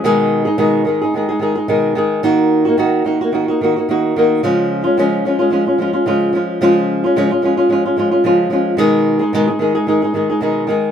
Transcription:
X:1
M:4/4
L:1/16
Q:"Swing 16ths" 1/4=110
K:Dbmix
V:1 name="Nylon-string guitar"
[C,E,A,EA]3 [A,EA] [C,E,A,EA]2 [E,A,EA] [A,EA] [E,A,EA] [A,EA] [E,A,EA] [A,EA] [C,E,A,EA]2 [E,A,EA]2 | [E,B,EG]3 [B,EG] [E,B,EG]2 [E,B,EG] [B,EG] [E,B,EG] [B,EG] [E,B,EG] [B,EG] [E,B,EG]2 [E,B,EG]2 | [D,F,A,DF]3 [A,DF] [D,F,A,DF]2 [F,A,DF] [A,DF] [F,A,DF] [A,DF] [F,A,DF] [A,DF] [D,F,A,DF]2 [F,A,DF]2 | [D,F,A,DF]3 [A,DF] [D,F,A,DF] [A,DF] [F,A,DF] [A,DF] [F,A,DF] [A,DF] [F,A,DF] [A,DF] [D,F,A,DF]2 [F,A,DF]2 |
[C,E,A,EA]3 [A,EA] [C,E,A,EA] [A,EA] [E,A,EA] [A,EA] [E,A,EA] [A,EA] [E,A,EA] [A,EA] [C,E,A,EA]2 [E,A,EA]2 |]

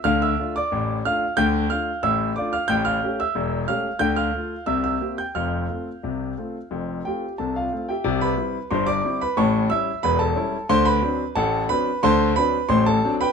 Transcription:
X:1
M:2/4
L:1/16
Q:1/4=90
K:F
V:1 name="Grand piano"
[ff'] [ee']2 [dd']3 [ff']2 | [gg']2 [ff']2 [ee']2 [dd'] [ff'] | [gg'] [ff']2 [ee']3 [ff']2 | [gg'] [ff']3 [ee'] [ee']2 [gg'] |
[ff']8- | [ff']2 [Gg]2 [Aa] [Ff]2 [Geg]- | [K:C] [Geg] [Bb]3 [cc'] [dd']2 [Bb] | [^ca^c']2 [ee']2 [Bb] [Aa]3 |
[cc'] [Bb]3 [A^fa]2 [Bb]2 | [cac']2 [Bb]2 [cc'] [Aa]2 [Bgb] |]
V:2 name="Grand piano"
[D,,D,]2 [A,DF]2 [A,,,A,,]2 [A,DF]2 | [D,,D,]2 [A,DF]2 [A,,,A,,]2 [A,DF]2 | [A,,,A,,]2 [A,^CG]2 [E,,,E,,]2 [A,CG]2 | [D,,D,]2 [A,F]2 [C,,C,]2 [B,CG]2 |
[F,,,F,,]2 [A,CF]2 [C,,C,]2 [A,CF]2 | [F,,,F,,]2 [A,CF]2 [C,,C,]2 [A,CF]2 | [K:C] [C,,C,]2 [G,CE]2 [G,,,G,,]2 [G,CE]2 | [A,,,A,,]2 [G,^CE]2 [E,,,E,,]2 [G,CE]2 |
[D,,D,]2 [^F,CD]2 [A,,,A,,]2 [F,CD]2 | [D,,D,]2 [^F,CD]2 [A,,,A,,]2 [F,CD]2 |]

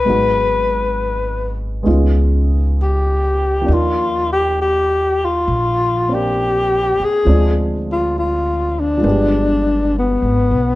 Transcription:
X:1
M:4/4
L:1/8
Q:"Swing" 1/4=67
K:Eb
V:1 name="Tenor saxophone"
=B3 z3 G2 | F G G F2 G2 A | z F F D3 =B,2 |]
V:2 name="Upright piano"
[_G,A,_CE_G]4 [A,C_DEF]4 | [F,B,DEF]4- [F,B,DEF] [B,CD]3 | [F,A,CDF]4 [F,A,=B,DG]4 |]
V:3 name="Upright bass" clef=bass
A,,,4 _D,,4 | E,,4 B,,,3 z | D,,4 G,,,2- (3G,,, A,,, =B,,, |]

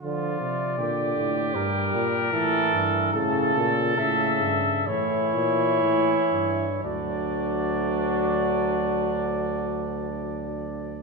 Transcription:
X:1
M:4/4
L:1/8
Q:1/4=65
K:Aphr
V:1 name="Trumpet"
d4 B4 | A2 e2 ^c4 | d8 |]
V:2 name="Trumpet"
F2 G4 A2 | A4 E4 | D8 |]
V:3 name="Trombone" clef=bass
F,2 D,2 G,2 E,2 | ^C,2 C,2 E,4 | ^F,8 |]
V:4 name="Bass trombone" clef=bass
D, C, B,, A,, G,, B,, A,, G,, | A,, B,, A,, G,, A,, B,, A,, G,, | D,,8 |]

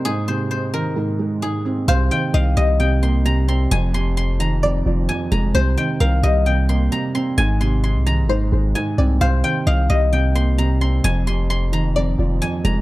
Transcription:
X:1
M:4/4
L:1/16
Q:1/4=131
K:Cm
V:1 name="Guzheng"
A2 c2 c2 B6 A2 z2 | c2 g2 f2 e2 g2 c'2 b2 c'2 | a2 c'2 c'2 b6 a2 b2 | c2 g2 f2 e2 g2 c'2 b2 c'2 |
a2 c'2 c'2 b6 a2 z2 | c2 g2 f2 e2 g2 c'2 b2 c'2 | a2 c'2 c'2 b6 a2 b2 |]
V:2 name="Synth pluck"
z16 | f4 e8 z4 | z8 d8 | c4 B8 z4 |
z8 c6 d2 | f4 e8 z4 | z8 d8 |]
V:3 name="Felt piano" clef=bass
A,,2 C,4 E,2 A,,2 A,2 A,,2 C2 | C,2 E,4 G,2 C,2 B,2 C,2 C2 | F,,2 C,4 E,2 F,,2 F,2 F,,2 A,2 | C,2 E,4 G,2 C,2 B,2 C,2 C2 |
A,,2 C,4 E,2 A,,2 A,2 A,,2 C2 | C,2 E,4 G,2 C,2 B,2 C,2 C2 | F,,2 C,4 E,2 F,,2 F,2 F,,2 A,2 |]
V:4 name="808-style bass" clef=bass
z16 | C,,2 z2 C,,2 C,,8- C,,2 | F,,,8- F,,,2 F,,,2 z2 F,,,2 | C,,2 z2 C,,2 C,,6 z4 |
A,,,4- A,,, C,,2- C,,/2 A,,,2- A,,,/2 A,,,2 z2 C,,2 | C,,2 z2 C,,2 C,,8- C,,2 | F,,,8- F,,,2 F,,,2 z2 F,,,2 |]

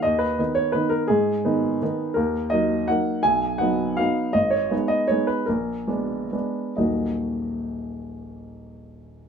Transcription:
X:1
M:3/4
L:1/8
Q:1/4=159
K:Ebm
V:1 name="Upright piano"
e c2 d c B | A6 | B2 e2 g2 | a2 ^f2 =f2 |
e d2 e d c | B6 | [E,,,B,,,G,B,EGe]6- | [E,,,B,,,G,B,EGe]6 |]
V:2 name="Upright piano"
E,,2 [E,CE]2 [E,CE]2 | A,,2 [E,CE]2 [E,CE]2 | E,,2 [G,B,E]2 [G,B,E]2 | =B,,,2 [^F,=B,^D]2 [F,B,D]2 |
A,,,2 [A,CE]2 [A,CE]2 | B,,,2 [A,C=D]2 [A,CD]2 | z6 | z6 |]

